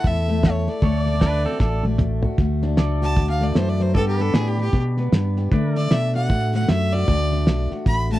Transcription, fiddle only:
0, 0, Header, 1, 2, 480
1, 0, Start_track
1, 0, Key_signature, 2, "major"
1, 0, Tempo, 391389
1, 1009, Time_signature, 4, 2, 24, 8
1, 10047, End_track
2, 0, Start_track
2, 0, Title_t, "Fiddle"
2, 0, Program_c, 0, 110
2, 83, Note_on_c, 0, 76, 89
2, 558, Note_on_c, 0, 73, 81
2, 576, Note_off_c, 0, 76, 0
2, 723, Note_off_c, 0, 73, 0
2, 723, Note_on_c, 0, 73, 58
2, 837, Note_on_c, 0, 74, 85
2, 855, Note_off_c, 0, 73, 0
2, 2456, Note_off_c, 0, 74, 0
2, 3716, Note_on_c, 0, 81, 90
2, 4033, Note_off_c, 0, 81, 0
2, 4042, Note_on_c, 0, 77, 89
2, 4212, Note_on_c, 0, 74, 77
2, 4230, Note_off_c, 0, 77, 0
2, 4373, Note_on_c, 0, 72, 82
2, 4392, Note_off_c, 0, 74, 0
2, 4528, Note_on_c, 0, 74, 81
2, 4546, Note_off_c, 0, 72, 0
2, 4683, Note_on_c, 0, 72, 91
2, 4702, Note_off_c, 0, 74, 0
2, 4837, Note_off_c, 0, 72, 0
2, 4844, Note_on_c, 0, 69, 93
2, 4995, Note_off_c, 0, 69, 0
2, 5002, Note_on_c, 0, 67, 87
2, 5167, Note_on_c, 0, 69, 94
2, 5185, Note_off_c, 0, 67, 0
2, 5325, Note_on_c, 0, 68, 85
2, 5344, Note_off_c, 0, 69, 0
2, 5492, Note_on_c, 0, 67, 80
2, 5510, Note_off_c, 0, 68, 0
2, 5645, Note_off_c, 0, 67, 0
2, 5655, Note_on_c, 0, 67, 88
2, 5902, Note_off_c, 0, 67, 0
2, 7068, Note_on_c, 0, 74, 96
2, 7258, Note_on_c, 0, 76, 98
2, 7277, Note_off_c, 0, 74, 0
2, 7537, Note_off_c, 0, 76, 0
2, 7544, Note_on_c, 0, 78, 95
2, 8008, Note_off_c, 0, 78, 0
2, 8029, Note_on_c, 0, 78, 83
2, 8203, Note_on_c, 0, 76, 92
2, 8222, Note_off_c, 0, 78, 0
2, 8493, Note_on_c, 0, 74, 110
2, 8512, Note_off_c, 0, 76, 0
2, 9428, Note_off_c, 0, 74, 0
2, 9647, Note_on_c, 0, 83, 105
2, 9953, Note_off_c, 0, 83, 0
2, 9960, Note_on_c, 0, 81, 92
2, 10047, Note_off_c, 0, 81, 0
2, 10047, End_track
0, 0, End_of_file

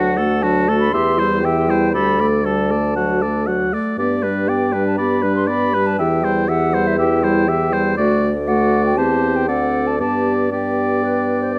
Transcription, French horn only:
0, 0, Header, 1, 2, 480
1, 0, Start_track
1, 0, Key_signature, 1, "major"
1, 0, Tempo, 506329
1, 1845, Time_signature, 4, 2, 24, 8
1, 4260, Tempo, 498753
1, 8580, Tempo, 513259
1, 11017, End_track
2, 0, Start_track
2, 0, Title_t, "French horn"
2, 0, Program_c, 0, 60
2, 0, Note_on_c, 0, 54, 45
2, 175, Note_on_c, 0, 57, 46
2, 189, Note_off_c, 0, 54, 0
2, 417, Note_on_c, 0, 54, 52
2, 431, Note_off_c, 0, 57, 0
2, 648, Note_on_c, 0, 57, 45
2, 662, Note_off_c, 0, 54, 0
2, 877, Note_off_c, 0, 57, 0
2, 883, Note_on_c, 0, 52, 43
2, 1120, Note_on_c, 0, 55, 37
2, 1134, Note_off_c, 0, 52, 0
2, 1362, Note_on_c, 0, 52, 42
2, 1377, Note_off_c, 0, 55, 0
2, 1601, Note_on_c, 0, 55, 37
2, 1616, Note_off_c, 0, 52, 0
2, 1834, Note_off_c, 0, 55, 0
2, 1840, Note_on_c, 0, 55, 46
2, 2080, Note_on_c, 0, 57, 38
2, 2094, Note_off_c, 0, 55, 0
2, 2323, Note_on_c, 0, 55, 41
2, 2337, Note_off_c, 0, 57, 0
2, 2573, Note_on_c, 0, 57, 35
2, 2587, Note_off_c, 0, 55, 0
2, 2811, Note_off_c, 0, 57, 0
2, 2817, Note_on_c, 0, 54, 35
2, 3063, Note_on_c, 0, 57, 31
2, 3077, Note_off_c, 0, 54, 0
2, 3306, Note_on_c, 0, 54, 29
2, 3320, Note_off_c, 0, 57, 0
2, 3545, Note_on_c, 0, 57, 32
2, 3559, Note_off_c, 0, 54, 0
2, 3779, Note_off_c, 0, 57, 0
2, 3785, Note_on_c, 0, 59, 40
2, 4024, Note_on_c, 0, 55, 34
2, 4038, Note_off_c, 0, 59, 0
2, 4257, Note_on_c, 0, 59, 38
2, 4271, Note_off_c, 0, 55, 0
2, 4495, Note_on_c, 0, 55, 34
2, 4509, Note_off_c, 0, 59, 0
2, 4732, Note_off_c, 0, 55, 0
2, 4737, Note_on_c, 0, 59, 38
2, 4976, Note_on_c, 0, 55, 33
2, 4990, Note_off_c, 0, 59, 0
2, 5215, Note_on_c, 0, 59, 37
2, 5229, Note_off_c, 0, 55, 0
2, 5462, Note_on_c, 0, 55, 35
2, 5477, Note_off_c, 0, 59, 0
2, 5694, Note_off_c, 0, 55, 0
2, 5700, Note_on_c, 0, 52, 46
2, 5938, Note_on_c, 0, 55, 41
2, 5952, Note_off_c, 0, 52, 0
2, 6179, Note_on_c, 0, 52, 44
2, 6193, Note_off_c, 0, 55, 0
2, 6426, Note_on_c, 0, 55, 40
2, 6440, Note_off_c, 0, 52, 0
2, 6658, Note_off_c, 0, 55, 0
2, 6664, Note_on_c, 0, 52, 45
2, 6904, Note_on_c, 0, 55, 45
2, 6918, Note_off_c, 0, 52, 0
2, 7139, Note_on_c, 0, 52, 42
2, 7154, Note_off_c, 0, 55, 0
2, 7378, Note_on_c, 0, 55, 44
2, 7393, Note_off_c, 0, 52, 0
2, 7611, Note_off_c, 0, 55, 0
2, 7616, Note_on_c, 0, 57, 53
2, 7966, Note_off_c, 0, 57, 0
2, 8100, Note_on_c, 0, 57, 59
2, 8567, Note_off_c, 0, 57, 0
2, 8573, Note_on_c, 0, 60, 51
2, 9043, Note_off_c, 0, 60, 0
2, 9052, Note_on_c, 0, 60, 40
2, 9523, Note_off_c, 0, 60, 0
2, 9535, Note_on_c, 0, 59, 41
2, 10008, Note_off_c, 0, 59, 0
2, 10017, Note_on_c, 0, 59, 42
2, 11017, Note_off_c, 0, 59, 0
2, 11017, End_track
0, 0, End_of_file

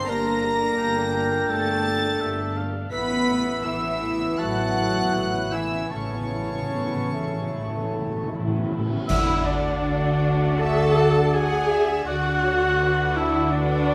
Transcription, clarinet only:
0, 0, Header, 1, 2, 480
1, 0, Start_track
1, 0, Tempo, 710900
1, 55, Time_signature, 4, 2, 24, 8
1, 1976, Tempo, 735294
1, 2936, Tempo, 760456
1, 3896, Tempo, 800000
1, 5336, Tempo, 762389
1, 6776, Tempo, 729040
1, 8975, End_track
2, 0, Start_track
2, 0, Title_t, "Clarinet"
2, 0, Program_c, 0, 71
2, 0, Note_on_c, 0, 72, 115
2, 61, Note_on_c, 0, 70, 90
2, 71, Note_off_c, 0, 72, 0
2, 1012, Note_on_c, 0, 69, 88
2, 1023, Note_off_c, 0, 70, 0
2, 1730, Note_off_c, 0, 69, 0
2, 1966, Note_on_c, 0, 71, 94
2, 2451, Note_on_c, 0, 64, 85
2, 2461, Note_off_c, 0, 71, 0
2, 2937, Note_on_c, 0, 66, 94
2, 2946, Note_off_c, 0, 64, 0
2, 3653, Note_on_c, 0, 64, 73
2, 3663, Note_off_c, 0, 66, 0
2, 3900, Note_on_c, 0, 61, 74
2, 3909, Note_off_c, 0, 64, 0
2, 5339, Note_off_c, 0, 61, 0
2, 5820, Note_on_c, 0, 74, 84
2, 7717, Note_off_c, 0, 74, 0
2, 7745, Note_on_c, 0, 74, 81
2, 8975, Note_off_c, 0, 74, 0
2, 8975, End_track
0, 0, End_of_file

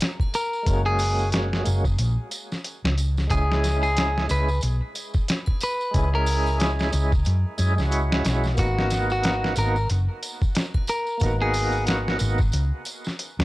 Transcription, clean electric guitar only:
0, 0, Header, 1, 2, 480
1, 0, Start_track
1, 0, Key_signature, 5, "minor"
1, 0, Tempo, 659341
1, 486, Time_signature, 4, 2, 24, 8
1, 9787, End_track
2, 0, Start_track
2, 0, Title_t, "Clean electric guitar"
2, 0, Program_c, 0, 27
2, 255, Note_on_c, 0, 70, 81
2, 588, Note_off_c, 0, 70, 0
2, 624, Note_on_c, 0, 68, 89
2, 935, Note_off_c, 0, 68, 0
2, 2409, Note_on_c, 0, 68, 98
2, 2745, Note_off_c, 0, 68, 0
2, 2787, Note_on_c, 0, 68, 85
2, 3096, Note_off_c, 0, 68, 0
2, 3137, Note_on_c, 0, 71, 83
2, 3351, Note_off_c, 0, 71, 0
2, 4102, Note_on_c, 0, 71, 80
2, 4432, Note_off_c, 0, 71, 0
2, 4477, Note_on_c, 0, 70, 84
2, 4781, Note_off_c, 0, 70, 0
2, 6254, Note_on_c, 0, 66, 92
2, 6587, Note_off_c, 0, 66, 0
2, 6637, Note_on_c, 0, 66, 80
2, 6942, Note_off_c, 0, 66, 0
2, 6978, Note_on_c, 0, 70, 82
2, 7192, Note_off_c, 0, 70, 0
2, 7931, Note_on_c, 0, 70, 89
2, 8266, Note_off_c, 0, 70, 0
2, 8311, Note_on_c, 0, 68, 84
2, 8618, Note_off_c, 0, 68, 0
2, 9787, End_track
0, 0, End_of_file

